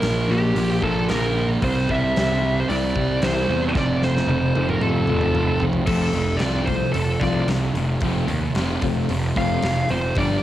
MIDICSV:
0, 0, Header, 1, 7, 480
1, 0, Start_track
1, 0, Tempo, 533808
1, 1461, Time_signature, 4, 2, 24, 8
1, 9377, End_track
2, 0, Start_track
2, 0, Title_t, "Lead electric guitar"
2, 0, Program_c, 0, 29
2, 0, Note_on_c, 0, 70, 88
2, 274, Note_on_c, 0, 67, 91
2, 293, Note_off_c, 0, 70, 0
2, 748, Note_on_c, 0, 69, 87
2, 762, Note_off_c, 0, 67, 0
2, 969, Note_off_c, 0, 69, 0
2, 986, Note_on_c, 0, 70, 109
2, 1318, Note_off_c, 0, 70, 0
2, 1478, Note_on_c, 0, 72, 102
2, 1692, Note_off_c, 0, 72, 0
2, 1720, Note_on_c, 0, 76, 101
2, 2329, Note_off_c, 0, 76, 0
2, 2337, Note_on_c, 0, 72, 76
2, 2408, Note_off_c, 0, 72, 0
2, 2415, Note_on_c, 0, 74, 118
2, 2909, Note_off_c, 0, 74, 0
2, 2910, Note_on_c, 0, 72, 104
2, 3237, Note_off_c, 0, 72, 0
2, 3392, Note_on_c, 0, 74, 111
2, 3629, Note_off_c, 0, 74, 0
2, 3632, Note_on_c, 0, 72, 88
2, 4185, Note_off_c, 0, 72, 0
2, 4230, Note_on_c, 0, 70, 81
2, 4331, Note_off_c, 0, 70, 0
2, 4331, Note_on_c, 0, 69, 92
2, 5051, Note_off_c, 0, 69, 0
2, 5275, Note_on_c, 0, 69, 83
2, 5727, Note_on_c, 0, 74, 90
2, 5778, Note_off_c, 0, 69, 0
2, 5982, Note_on_c, 0, 72, 91
2, 5997, Note_off_c, 0, 74, 0
2, 6219, Note_off_c, 0, 72, 0
2, 6229, Note_on_c, 0, 69, 92
2, 6471, Note_on_c, 0, 74, 82
2, 6489, Note_off_c, 0, 69, 0
2, 6705, Note_off_c, 0, 74, 0
2, 8431, Note_on_c, 0, 77, 101
2, 8904, Note_on_c, 0, 72, 82
2, 8922, Note_off_c, 0, 77, 0
2, 9151, Note_on_c, 0, 74, 105
2, 9152, Note_off_c, 0, 72, 0
2, 9377, Note_off_c, 0, 74, 0
2, 9377, End_track
3, 0, Start_track
3, 0, Title_t, "Steel-string acoustic guitar"
3, 0, Program_c, 1, 25
3, 0, Note_on_c, 1, 46, 76
3, 0, Note_on_c, 1, 58, 66
3, 33, Note_on_c, 1, 62, 70
3, 257, Note_off_c, 1, 58, 0
3, 268, Note_on_c, 1, 58, 72
3, 519, Note_on_c, 1, 65, 74
3, 744, Note_off_c, 1, 46, 0
3, 744, Note_off_c, 1, 58, 0
3, 755, Note_on_c, 1, 58, 68
3, 995, Note_on_c, 1, 50, 73
3, 1218, Note_off_c, 1, 62, 0
3, 1229, Note_on_c, 1, 62, 70
3, 1465, Note_off_c, 1, 62, 0
3, 1465, Note_on_c, 1, 48, 71
3, 1466, Note_off_c, 1, 58, 0
3, 1467, Note_off_c, 1, 50, 0
3, 1468, Note_off_c, 1, 65, 0
3, 1704, Note_on_c, 1, 55, 66
3, 1943, Note_on_c, 1, 60, 72
3, 2166, Note_off_c, 1, 55, 0
3, 2177, Note_on_c, 1, 55, 72
3, 2416, Note_on_c, 1, 64, 81
3, 2649, Note_off_c, 1, 55, 0
3, 2658, Note_off_c, 1, 48, 0
3, 2660, Note_on_c, 1, 55, 67
3, 2904, Note_on_c, 1, 52, 73
3, 3141, Note_off_c, 1, 60, 0
3, 3144, Note_on_c, 1, 60, 68
3, 3373, Note_off_c, 1, 64, 0
3, 3376, Note_off_c, 1, 55, 0
3, 3378, Note_off_c, 1, 52, 0
3, 3385, Note_on_c, 1, 41, 79
3, 3632, Note_on_c, 1, 57, 68
3, 3851, Note_off_c, 1, 60, 0
3, 3855, Note_on_c, 1, 60, 76
3, 4091, Note_off_c, 1, 57, 0
3, 4102, Note_on_c, 1, 57, 71
3, 4339, Note_on_c, 1, 65, 81
3, 4567, Note_off_c, 1, 57, 0
3, 4577, Note_off_c, 1, 41, 0
3, 4578, Note_on_c, 1, 57, 76
3, 4812, Note_on_c, 1, 53, 77
3, 5047, Note_off_c, 1, 60, 0
3, 5058, Note_on_c, 1, 60, 74
3, 5275, Note_off_c, 1, 53, 0
3, 5284, Note_off_c, 1, 57, 0
3, 5286, Note_on_c, 1, 53, 80
3, 5287, Note_off_c, 1, 60, 0
3, 5288, Note_off_c, 1, 65, 0
3, 5295, Note_on_c, 1, 57, 84
3, 5298, Note_on_c, 1, 60, 94
3, 5299, Note_on_c, 1, 65, 89
3, 5528, Note_off_c, 1, 53, 0
3, 5533, Note_off_c, 1, 57, 0
3, 5535, Note_off_c, 1, 60, 0
3, 5535, Note_off_c, 1, 65, 0
3, 6013, Note_on_c, 1, 65, 89
3, 6022, Note_on_c, 1, 57, 76
3, 6024, Note_on_c, 1, 60, 83
3, 6025, Note_on_c, 1, 53, 65
3, 6242, Note_off_c, 1, 53, 0
3, 6248, Note_off_c, 1, 57, 0
3, 6250, Note_off_c, 1, 65, 0
3, 6251, Note_off_c, 1, 60, 0
3, 6492, Note_on_c, 1, 65, 91
3, 6496, Note_on_c, 1, 60, 92
3, 6500, Note_on_c, 1, 53, 78
3, 6500, Note_on_c, 1, 57, 82
3, 6723, Note_off_c, 1, 53, 0
3, 6727, Note_off_c, 1, 57, 0
3, 6727, Note_off_c, 1, 60, 0
3, 6733, Note_off_c, 1, 65, 0
3, 7218, Note_on_c, 1, 53, 86
3, 7221, Note_on_c, 1, 57, 88
3, 7225, Note_on_c, 1, 60, 93
3, 7230, Note_on_c, 1, 65, 93
3, 7453, Note_off_c, 1, 65, 0
3, 7456, Note_off_c, 1, 57, 0
3, 7457, Note_off_c, 1, 60, 0
3, 7458, Note_off_c, 1, 53, 0
3, 7944, Note_on_c, 1, 65, 91
3, 7947, Note_on_c, 1, 60, 91
3, 7951, Note_on_c, 1, 57, 75
3, 7955, Note_on_c, 1, 53, 74
3, 8173, Note_off_c, 1, 53, 0
3, 8176, Note_off_c, 1, 57, 0
3, 8182, Note_off_c, 1, 65, 0
3, 8184, Note_off_c, 1, 60, 0
3, 8434, Note_on_c, 1, 65, 90
3, 8437, Note_on_c, 1, 60, 99
3, 8441, Note_on_c, 1, 57, 77
3, 8447, Note_on_c, 1, 53, 87
3, 8665, Note_off_c, 1, 53, 0
3, 8668, Note_off_c, 1, 57, 0
3, 8668, Note_off_c, 1, 65, 0
3, 8669, Note_off_c, 1, 60, 0
3, 9156, Note_on_c, 1, 53, 89
3, 9163, Note_on_c, 1, 58, 87
3, 9164, Note_on_c, 1, 62, 84
3, 9167, Note_on_c, 1, 67, 98
3, 9377, Note_off_c, 1, 53, 0
3, 9377, Note_off_c, 1, 58, 0
3, 9377, Note_off_c, 1, 62, 0
3, 9377, Note_off_c, 1, 67, 0
3, 9377, End_track
4, 0, Start_track
4, 0, Title_t, "Distorted electric guitar"
4, 0, Program_c, 2, 30
4, 0, Note_on_c, 2, 46, 75
4, 0, Note_on_c, 2, 53, 87
4, 0, Note_on_c, 2, 58, 105
4, 475, Note_off_c, 2, 46, 0
4, 486, Note_on_c, 2, 46, 78
4, 490, Note_off_c, 2, 53, 0
4, 501, Note_on_c, 2, 53, 93
4, 502, Note_off_c, 2, 58, 0
4, 512, Note_on_c, 2, 58, 87
4, 1437, Note_off_c, 2, 46, 0
4, 1444, Note_off_c, 2, 53, 0
4, 1450, Note_off_c, 2, 58, 0
4, 1457, Note_on_c, 2, 48, 85
4, 1469, Note_on_c, 2, 55, 97
4, 1480, Note_on_c, 2, 60, 98
4, 2401, Note_off_c, 2, 48, 0
4, 2407, Note_off_c, 2, 55, 0
4, 2418, Note_on_c, 2, 48, 70
4, 2429, Note_on_c, 2, 55, 79
4, 2437, Note_off_c, 2, 60, 0
4, 2441, Note_on_c, 2, 60, 88
4, 3360, Note_off_c, 2, 48, 0
4, 3365, Note_off_c, 2, 55, 0
4, 3373, Note_on_c, 2, 41, 93
4, 3388, Note_on_c, 2, 48, 93
4, 3396, Note_on_c, 2, 53, 94
4, 4314, Note_off_c, 2, 41, 0
4, 4324, Note_off_c, 2, 48, 0
4, 4325, Note_on_c, 2, 41, 80
4, 4328, Note_off_c, 2, 53, 0
4, 4342, Note_on_c, 2, 48, 89
4, 4354, Note_on_c, 2, 53, 91
4, 5273, Note_off_c, 2, 41, 0
4, 5282, Note_off_c, 2, 48, 0
4, 5283, Note_on_c, 2, 41, 83
4, 5288, Note_off_c, 2, 53, 0
4, 5293, Note_on_c, 2, 48, 81
4, 5299, Note_on_c, 2, 53, 97
4, 5513, Note_off_c, 2, 41, 0
4, 5517, Note_off_c, 2, 48, 0
4, 5521, Note_off_c, 2, 53, 0
4, 5539, Note_on_c, 2, 48, 71
4, 5540, Note_on_c, 2, 41, 67
4, 5588, Note_off_c, 2, 60, 0
4, 5751, Note_off_c, 2, 48, 0
4, 5752, Note_off_c, 2, 41, 0
4, 5765, Note_on_c, 2, 41, 100
4, 5770, Note_on_c, 2, 48, 92
4, 5778, Note_on_c, 2, 53, 103
4, 5994, Note_off_c, 2, 41, 0
4, 5997, Note_off_c, 2, 48, 0
4, 6001, Note_off_c, 2, 53, 0
4, 6009, Note_on_c, 2, 41, 70
4, 6013, Note_on_c, 2, 48, 79
4, 6227, Note_off_c, 2, 41, 0
4, 6229, Note_off_c, 2, 48, 0
4, 6248, Note_on_c, 2, 41, 77
4, 6254, Note_on_c, 2, 48, 86
4, 6467, Note_off_c, 2, 41, 0
4, 6469, Note_off_c, 2, 48, 0
4, 6488, Note_on_c, 2, 41, 88
4, 6497, Note_on_c, 2, 53, 103
4, 6498, Note_on_c, 2, 48, 85
4, 6717, Note_off_c, 2, 41, 0
4, 6721, Note_off_c, 2, 53, 0
4, 6722, Note_off_c, 2, 48, 0
4, 6733, Note_on_c, 2, 41, 76
4, 6739, Note_on_c, 2, 48, 76
4, 6950, Note_off_c, 2, 41, 0
4, 6953, Note_off_c, 2, 48, 0
4, 6987, Note_on_c, 2, 41, 76
4, 6989, Note_on_c, 2, 48, 81
4, 7197, Note_off_c, 2, 41, 0
4, 7198, Note_off_c, 2, 48, 0
4, 7231, Note_on_c, 2, 41, 85
4, 7233, Note_on_c, 2, 48, 89
4, 7237, Note_on_c, 2, 53, 106
4, 7449, Note_off_c, 2, 41, 0
4, 7451, Note_off_c, 2, 48, 0
4, 7452, Note_off_c, 2, 53, 0
4, 7477, Note_on_c, 2, 41, 66
4, 7482, Note_on_c, 2, 48, 73
4, 7683, Note_off_c, 2, 41, 0
4, 7686, Note_off_c, 2, 48, 0
4, 7713, Note_on_c, 2, 41, 86
4, 7720, Note_on_c, 2, 48, 92
4, 7725, Note_on_c, 2, 53, 94
4, 7931, Note_off_c, 2, 41, 0
4, 7935, Note_off_c, 2, 48, 0
4, 7938, Note_off_c, 2, 53, 0
4, 7949, Note_on_c, 2, 41, 66
4, 7951, Note_on_c, 2, 48, 82
4, 8161, Note_off_c, 2, 41, 0
4, 8161, Note_off_c, 2, 48, 0
4, 8185, Note_on_c, 2, 41, 76
4, 8189, Note_on_c, 2, 48, 89
4, 8399, Note_off_c, 2, 41, 0
4, 8401, Note_off_c, 2, 48, 0
4, 8421, Note_on_c, 2, 41, 88
4, 8425, Note_on_c, 2, 48, 85
4, 8431, Note_on_c, 2, 53, 86
4, 8647, Note_off_c, 2, 41, 0
4, 8649, Note_off_c, 2, 48, 0
4, 8652, Note_off_c, 2, 53, 0
4, 8662, Note_on_c, 2, 41, 78
4, 8668, Note_on_c, 2, 48, 83
4, 8878, Note_off_c, 2, 41, 0
4, 8882, Note_off_c, 2, 48, 0
4, 8911, Note_on_c, 2, 41, 74
4, 8914, Note_on_c, 2, 48, 73
4, 9124, Note_off_c, 2, 41, 0
4, 9125, Note_off_c, 2, 48, 0
4, 9144, Note_on_c, 2, 43, 91
4, 9151, Note_on_c, 2, 50, 92
4, 9156, Note_on_c, 2, 55, 97
4, 9370, Note_off_c, 2, 43, 0
4, 9374, Note_off_c, 2, 50, 0
4, 9377, Note_off_c, 2, 55, 0
4, 9377, End_track
5, 0, Start_track
5, 0, Title_t, "Picked electric bass"
5, 0, Program_c, 3, 34
5, 19, Note_on_c, 3, 34, 88
5, 229, Note_off_c, 3, 34, 0
5, 260, Note_on_c, 3, 34, 94
5, 469, Note_off_c, 3, 34, 0
5, 497, Note_on_c, 3, 34, 83
5, 707, Note_off_c, 3, 34, 0
5, 743, Note_on_c, 3, 34, 86
5, 950, Note_off_c, 3, 34, 0
5, 988, Note_on_c, 3, 34, 88
5, 1399, Note_off_c, 3, 34, 0
5, 1459, Note_on_c, 3, 36, 99
5, 1667, Note_off_c, 3, 36, 0
5, 1704, Note_on_c, 3, 36, 88
5, 1909, Note_off_c, 3, 36, 0
5, 1952, Note_on_c, 3, 36, 98
5, 2360, Note_off_c, 3, 36, 0
5, 2423, Note_on_c, 3, 36, 88
5, 2627, Note_off_c, 3, 36, 0
5, 2660, Note_on_c, 3, 36, 84
5, 2865, Note_off_c, 3, 36, 0
5, 2893, Note_on_c, 3, 36, 93
5, 3101, Note_off_c, 3, 36, 0
5, 3137, Note_on_c, 3, 40, 92
5, 3343, Note_off_c, 3, 40, 0
5, 3372, Note_on_c, 3, 29, 103
5, 3787, Note_off_c, 3, 29, 0
5, 3842, Note_on_c, 3, 29, 99
5, 4054, Note_off_c, 3, 29, 0
5, 4094, Note_on_c, 3, 29, 85
5, 4301, Note_off_c, 3, 29, 0
5, 4326, Note_on_c, 3, 29, 77
5, 4536, Note_off_c, 3, 29, 0
5, 4573, Note_on_c, 3, 29, 84
5, 4779, Note_off_c, 3, 29, 0
5, 4811, Note_on_c, 3, 29, 92
5, 5226, Note_off_c, 3, 29, 0
5, 5282, Note_on_c, 3, 29, 93
5, 5475, Note_off_c, 3, 29, 0
5, 5522, Note_on_c, 3, 29, 90
5, 5715, Note_off_c, 3, 29, 0
5, 5767, Note_on_c, 3, 36, 84
5, 6147, Note_off_c, 3, 36, 0
5, 6242, Note_on_c, 3, 29, 90
5, 6436, Note_off_c, 3, 29, 0
5, 6486, Note_on_c, 3, 36, 79
5, 6678, Note_off_c, 3, 36, 0
5, 6715, Note_on_c, 3, 36, 78
5, 6912, Note_off_c, 3, 36, 0
5, 6962, Note_on_c, 3, 29, 75
5, 7156, Note_off_c, 3, 29, 0
5, 7209, Note_on_c, 3, 29, 93
5, 7401, Note_off_c, 3, 29, 0
5, 7442, Note_on_c, 3, 39, 88
5, 7637, Note_off_c, 3, 39, 0
5, 7683, Note_on_c, 3, 29, 98
5, 7879, Note_off_c, 3, 29, 0
5, 7934, Note_on_c, 3, 29, 80
5, 8126, Note_off_c, 3, 29, 0
5, 8176, Note_on_c, 3, 29, 88
5, 8367, Note_off_c, 3, 29, 0
5, 8421, Note_on_c, 3, 29, 83
5, 8611, Note_off_c, 3, 29, 0
5, 8658, Note_on_c, 3, 29, 82
5, 8849, Note_off_c, 3, 29, 0
5, 8907, Note_on_c, 3, 29, 87
5, 9095, Note_off_c, 3, 29, 0
5, 9141, Note_on_c, 3, 31, 101
5, 9332, Note_off_c, 3, 31, 0
5, 9377, End_track
6, 0, Start_track
6, 0, Title_t, "Muted steel-string acoustic guitar strokes"
6, 5544, Note_on_c, 9, 29, 44
6, 5634, Note_off_c, 9, 29, 0
6, 6252, Note_on_c, 9, 29, 47
6, 6342, Note_off_c, 9, 29, 0
6, 6981, Note_on_c, 9, 29, 47
6, 7071, Note_off_c, 9, 29, 0
6, 7463, Note_on_c, 9, 29, 51
6, 7553, Note_off_c, 9, 29, 0
6, 7710, Note_on_c, 9, 29, 42
6, 7799, Note_off_c, 9, 29, 0
6, 8184, Note_on_c, 9, 29, 47
6, 8274, Note_off_c, 9, 29, 0
6, 8675, Note_on_c, 9, 29, 46
6, 8765, Note_off_c, 9, 29, 0
6, 9377, End_track
7, 0, Start_track
7, 0, Title_t, "Drums"
7, 20, Note_on_c, 9, 46, 53
7, 29, Note_on_c, 9, 38, 112
7, 110, Note_off_c, 9, 46, 0
7, 119, Note_off_c, 9, 38, 0
7, 504, Note_on_c, 9, 46, 57
7, 594, Note_off_c, 9, 46, 0
7, 740, Note_on_c, 9, 36, 83
7, 830, Note_off_c, 9, 36, 0
7, 978, Note_on_c, 9, 46, 57
7, 987, Note_on_c, 9, 38, 102
7, 1068, Note_off_c, 9, 46, 0
7, 1077, Note_off_c, 9, 38, 0
7, 1459, Note_on_c, 9, 46, 63
7, 1460, Note_on_c, 9, 36, 109
7, 1549, Note_off_c, 9, 46, 0
7, 1550, Note_off_c, 9, 36, 0
7, 1701, Note_on_c, 9, 36, 85
7, 1791, Note_off_c, 9, 36, 0
7, 1945, Note_on_c, 9, 46, 53
7, 1954, Note_on_c, 9, 38, 112
7, 2035, Note_off_c, 9, 46, 0
7, 2044, Note_off_c, 9, 38, 0
7, 2425, Note_on_c, 9, 46, 58
7, 2515, Note_off_c, 9, 46, 0
7, 2658, Note_on_c, 9, 36, 88
7, 2748, Note_off_c, 9, 36, 0
7, 2893, Note_on_c, 9, 46, 56
7, 2902, Note_on_c, 9, 38, 119
7, 2983, Note_off_c, 9, 46, 0
7, 2992, Note_off_c, 9, 38, 0
7, 3374, Note_on_c, 9, 36, 118
7, 3377, Note_on_c, 9, 38, 58
7, 3464, Note_off_c, 9, 36, 0
7, 3467, Note_off_c, 9, 38, 0
7, 3617, Note_on_c, 9, 38, 63
7, 3707, Note_off_c, 9, 38, 0
7, 3747, Note_on_c, 9, 38, 60
7, 3837, Note_off_c, 9, 38, 0
7, 3859, Note_on_c, 9, 48, 75
7, 3949, Note_off_c, 9, 48, 0
7, 4094, Note_on_c, 9, 48, 80
7, 4184, Note_off_c, 9, 48, 0
7, 4215, Note_on_c, 9, 47, 65
7, 4305, Note_off_c, 9, 47, 0
7, 4328, Note_on_c, 9, 47, 87
7, 4418, Note_off_c, 9, 47, 0
7, 4561, Note_on_c, 9, 45, 87
7, 4651, Note_off_c, 9, 45, 0
7, 4684, Note_on_c, 9, 45, 76
7, 4774, Note_off_c, 9, 45, 0
7, 4808, Note_on_c, 9, 45, 92
7, 4898, Note_off_c, 9, 45, 0
7, 5035, Note_on_c, 9, 43, 79
7, 5125, Note_off_c, 9, 43, 0
7, 5152, Note_on_c, 9, 43, 88
7, 5242, Note_off_c, 9, 43, 0
7, 5275, Note_on_c, 9, 49, 112
7, 5282, Note_on_c, 9, 36, 112
7, 5365, Note_off_c, 9, 49, 0
7, 5372, Note_off_c, 9, 36, 0
7, 5510, Note_on_c, 9, 46, 55
7, 5600, Note_off_c, 9, 46, 0
7, 5747, Note_on_c, 9, 46, 75
7, 5756, Note_on_c, 9, 38, 106
7, 5837, Note_off_c, 9, 46, 0
7, 5846, Note_off_c, 9, 38, 0
7, 6001, Note_on_c, 9, 46, 60
7, 6003, Note_on_c, 9, 36, 86
7, 6091, Note_off_c, 9, 46, 0
7, 6093, Note_off_c, 9, 36, 0
7, 6242, Note_on_c, 9, 46, 84
7, 6332, Note_off_c, 9, 46, 0
7, 6484, Note_on_c, 9, 46, 55
7, 6485, Note_on_c, 9, 36, 87
7, 6493, Note_on_c, 9, 38, 32
7, 6574, Note_off_c, 9, 46, 0
7, 6575, Note_off_c, 9, 36, 0
7, 6583, Note_off_c, 9, 38, 0
7, 6726, Note_on_c, 9, 46, 78
7, 6735, Note_on_c, 9, 38, 103
7, 6816, Note_off_c, 9, 46, 0
7, 6825, Note_off_c, 9, 38, 0
7, 6971, Note_on_c, 9, 46, 50
7, 7061, Note_off_c, 9, 46, 0
7, 7199, Note_on_c, 9, 46, 74
7, 7209, Note_on_c, 9, 36, 104
7, 7289, Note_off_c, 9, 46, 0
7, 7299, Note_off_c, 9, 36, 0
7, 7447, Note_on_c, 9, 46, 58
7, 7537, Note_off_c, 9, 46, 0
7, 7688, Note_on_c, 9, 46, 65
7, 7697, Note_on_c, 9, 38, 109
7, 7778, Note_off_c, 9, 46, 0
7, 7787, Note_off_c, 9, 38, 0
7, 7928, Note_on_c, 9, 46, 64
7, 7934, Note_on_c, 9, 36, 98
7, 8018, Note_off_c, 9, 46, 0
7, 8023, Note_off_c, 9, 36, 0
7, 8174, Note_on_c, 9, 46, 82
7, 8264, Note_off_c, 9, 46, 0
7, 8419, Note_on_c, 9, 36, 84
7, 8419, Note_on_c, 9, 46, 59
7, 8428, Note_on_c, 9, 38, 30
7, 8509, Note_off_c, 9, 36, 0
7, 8509, Note_off_c, 9, 46, 0
7, 8518, Note_off_c, 9, 38, 0
7, 8655, Note_on_c, 9, 46, 74
7, 8664, Note_on_c, 9, 38, 114
7, 8745, Note_off_c, 9, 46, 0
7, 8754, Note_off_c, 9, 38, 0
7, 8892, Note_on_c, 9, 46, 51
7, 8982, Note_off_c, 9, 46, 0
7, 9130, Note_on_c, 9, 46, 80
7, 9141, Note_on_c, 9, 36, 116
7, 9220, Note_off_c, 9, 46, 0
7, 9231, Note_off_c, 9, 36, 0
7, 9377, End_track
0, 0, End_of_file